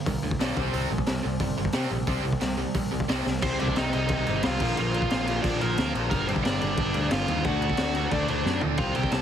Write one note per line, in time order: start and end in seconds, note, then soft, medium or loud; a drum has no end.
0.06 0.18 C2 medium
0.06 0.21 G2 medium
0.06 0.21 D3 medium
0.06 kick loud
0.06 open hi-hat medium
0.22 0.34 D2 medium
0.22 0.38 G2 medium
0.22 0.38 D3 medium
0.31 kick medium
0.39 0.51 B1 medium
0.39 0.56 G2 medium
0.39 0.56 D3 loud
0.39 0.56 G3 loud
0.39 snare loud
0.39 open hi-hat medium
0.57 0.68 C2 medium
0.57 0.71 C3 loud
0.57 0.71 G3 loud
0.57 0.72 C4 loud
0.57 kick loud
0.72 0.85 C2 loud
0.72 0.89 C3 medium
0.72 0.89 G3 medium
0.72 0.89 C4 loud
0.72 open hi-hat soft
0.91 1.02 A#1 medium
0.91 1.05 C3 medium
0.91 1.06 G3 medium
0.98 kick medium
1.06 1.19 C2 medium
1.06 1.22 C3 medium
1.06 1.22 G3 medium
1.06 snare loud
1.06 open hi-hat medium
1.24 1.36 C2 medium
1.24 1.39 C3 medium
1.24 1.39 G3 medium
1.40 1.52 G1 medium
1.40 1.56 C3 medium
1.40 1.56 G3 medium
1.40 kick loud
1.40 open hi-hat medium
1.57 1.69 G1 medium
1.57 1.73 C3 medium
1.57 1.73 G3 medium
1.65 kick medium
1.72 1.86 C3 medium
1.72 1.89 C3 medium
1.72 1.90 G3 medium
1.72 1.91 C4 loud
1.72 snare loud
1.72 open hi-hat medium
1.91 2.02 A#1 medium
1.91 2.06 C3 medium
1.91 2.07 G3 medium
2.07 2.19 C2 medium
2.07 2.23 C3 medium
2.07 2.23 G3 medium
2.07 2.24 C4 loud
2.07 kick loud
2.07 open hi-hat medium
2.24 2.36 C2 medium
2.24 2.40 C3 medium
2.24 2.40 G3 medium
2.33 kick medium
2.41 2.65 C2 medium
2.41 2.57 C3 medium
2.41 2.57 G3 medium
2.41 snare loud
2.41 open hi-hat medium
2.58 2.74 C3 medium
2.58 2.74 G3 medium
2.74 2.87 A#1 medium
2.74 2.91 C3 medium
2.74 2.91 G3 medium
2.74 kick loud
2.74 open hi-hat medium
2.92 3.04 C2 medium
2.92 3.07 C3 medium
2.92 3.08 G3 medium
3.00 kick medium
3.08 3.20 C2 medium
3.08 3.25 C3 loud
3.08 3.25 G3 medium
3.08 3.25 C4 loud
3.08 snare loud
3.08 open hi-hat medium
3.26 3.37 C2 medium
3.26 3.42 C3 medium
3.26 3.42 G3 medium
3.26 snare medium
3.42 3.57 C2 medium
3.42 3.59 C3 medium
3.42 3.59 G3 loud
3.42 3.59 C4 loud
3.42 3.59 C4 medium
3.42 3.59 C5 loud
3.42 kick loud
3.42 crash loud
3.42 crash medium
3.59 3.74 C2 medium
3.59 3.76 C3 medium
3.59 3.76 G3 medium
3.59 3.77 C4 loud
3.59 3.76 D4 medium
3.59 3.77 D5 medium
3.59 crash medium
3.68 kick medium
3.76 3.91 C2 loud
3.76 3.94 C3 medium
3.76 3.93 G3 loud
3.76 3.93 C4 loud
3.76 3.93 D#4 medium
3.76 3.92 D#5 medium
3.76 snare loud
3.76 crash medium
3.93 4.08 C2 medium
3.93 4.10 C3 medium
3.93 4.10 G3 medium
3.93 4.10 C4 medium
3.93 4.41 D#4 medium
3.93 4.44 D#5 loud
3.93 crash medium
4.09 4.23 C2 loud
4.09 4.27 C3 medium
4.09 4.26 G3 loud
4.09 4.26 C4 loud
4.09 kick loud
4.09 crash medium
4.27 4.41 G1 loud
4.27 4.43 C3 medium
4.27 4.43 G3 medium
4.27 4.43 C4 loud
4.27 crash medium
4.43 4.58 C2 loud
4.43 4.60 C3 loud
4.43 4.60 G3 loud
4.43 4.60 C4 loud
4.43 4.76 F4 medium
4.43 4.77 F5 loud
4.43 snare loud
4.43 crash medium
4.60 4.74 A#1 loud
4.60 4.77 A#2 medium
4.60 4.77 F3 loud
4.60 4.78 A#3 loud
4.60 kick loud
4.60 crash loud
4.77 5.05 A#1 loud
4.77 4.93 A#2 medium
4.77 4.93 F3 loud
4.77 4.94 A#3 loud
4.77 5.41 F4 medium
4.77 5.42 F5 loud
4.77 crash medium
4.94 5.11 A#2 loud
4.94 5.10 F3 loud
4.94 5.11 A#3 loud
4.94 crash medium
5.02 kick medium
5.10 5.38 A#1 medium
5.10 5.26 A#2 medium
5.10 5.27 F3 medium
5.10 5.28 A#3 medium
5.10 snare loud
5.10 crash medium
5.27 5.44 A#2 medium
5.27 5.44 F3 medium
5.27 5.43 A#3 medium
5.27 crash medium
5.42 5.58 A#1 loud
5.42 5.60 A#2 medium
5.42 5.60 F3 loud
5.42 5.61 A#3 loud
5.42 5.59 D4 medium
5.42 5.61 D5 loud
5.42 kick loud
5.42 crash medium
5.61 5.75 A#1 loud
5.61 5.78 A#2 loud
5.61 5.77 F3 medium
5.61 5.92 A#3 medium
5.61 5.77 A#3 loud
5.61 5.92 A#4 medium
5.61 crash medium
5.78 5.91 D2 loud
5.78 5.93 A#2 medium
5.78 5.94 F3 loud
5.78 5.94 A#3 loud
5.78 snare loud
5.78 crash medium
5.94 6.08 A#1 loud
5.94 6.10 A#2 medium
5.94 6.10 F3 loud
5.94 6.11 A#3 loud
5.94 crash medium
6.10 6.25 G1 loud
6.10 6.27 G2 medium
6.10 6.27 D3 loud
6.10 6.26 G3 loud
6.10 6.26 A#3 medium
6.10 6.28 A#4 loud
6.10 kick loud
6.10 crash medium
6.27 6.41 G1 medium
6.27 6.43 G2 medium
6.27 6.44 D3 loud
6.27 6.44 G3 loud
6.27 6.33 C4 medium
6.27 6.32 C5 loud
6.27 crash medium
6.36 kick medium
6.43 6.59 G1 medium
6.43 6.60 G2 medium
6.43 6.60 D3 medium
6.43 6.59 G3 loud
6.43 6.60 D4 medium
6.43 6.58 D5 medium
6.43 snare loud
6.43 crash medium
6.59 6.75 G1 medium
6.59 6.76 G2 medium
6.59 6.76 D3 medium
6.59 6.77 G3 medium
6.59 7.08 D4 medium
6.59 7.12 D5 loud
6.59 crash medium
6.77 6.91 G1 loud
6.77 6.93 G2 medium
6.77 6.93 D3 loud
6.77 6.93 G3 loud
6.77 kick loud
6.77 crash medium
6.94 7.08 D2 medium
6.94 7.09 G2 medium
6.94 7.10 D3 medium
6.94 7.10 G3 loud
6.94 crash medium
7.10 7.25 G1 loud
7.10 7.26 G2 loud
7.10 7.26 D3 loud
7.10 7.26 G3 loud
7.10 7.43 F4 medium
7.10 7.45 F5 medium
7.10 snare loud
7.10 crash medium
7.27 7.41 D#2 medium
7.27 7.44 G2 medium
7.27 7.42 D3 loud
7.27 7.44 G3 loud
7.27 crash medium
7.44 7.72 D2 medium
7.44 7.60 D3 loud
7.44 7.60 A3 loud
7.44 7.59 D4 loud
7.44 8.08 F#4 medium
7.44 8.14 F#5 medium
7.44 kick loud
7.44 crash medium
7.60 7.77 D3 medium
7.60 7.77 A3 loud
7.60 7.77 D4 loud
7.60 crash medium
7.70 kick medium
7.77 8.05 D2 loud
7.77 7.94 D3 loud
7.77 7.93 A3 medium
7.77 7.93 D4 loud
7.77 snare loud
7.77 crash medium
7.94 8.10 D3 medium
7.94 8.10 A3 medium
7.94 8.11 D4 medium
7.94 crash medium
8.11 8.25 D2 medium
8.11 8.28 D3 medium
8.11 8.27 A3 loud
8.11 8.27 D4 loud
8.11 8.28 D4 medium
8.11 8.27 D5 loud
8.11 kick loud
8.11 crash medium
8.28 8.42 D2 medium
8.28 8.44 D3 medium
8.28 8.45 A3 medium
8.28 8.45 D4 medium
8.28 8.60 D4 medium
8.28 8.61 D5 medium
8.28 crash medium
8.45 8.59 F#2 medium
8.45 8.62 D3 loud
8.45 8.61 A3 loud
8.45 8.61 D4 loud
8.45 snare medium
8.61 8.76 D2 loud
8.61 8.78 D3 medium
8.61 8.78 A3 medium
8.61 8.78 D4 medium
8.61 floor tom medium
8.78 8.92 C2 loud
8.78 8.95 C3 loud
8.78 8.95 G3 loud
8.78 8.95 C4 loud
8.78 8.95 F4 medium
8.78 8.94 F5 loud
8.78 kick loud
8.78 crash medium
8.95 9.09 C2 medium
8.95 9.11 C3 medium
8.95 9.11 G3 medium
8.95 9.11 C4 loud
8.95 9.11 G4 medium
8.95 9.13 G5 loud
8.95 crash medium
9.03 kick medium
9.12 9.22 C2 loud
9.12 9.22 C3 medium
9.12 9.22 G3 medium
9.12 9.22 C4 loud
9.12 9.22 A4 medium
9.12 9.22 A5 loud
9.12 snare loud
9.12 crash medium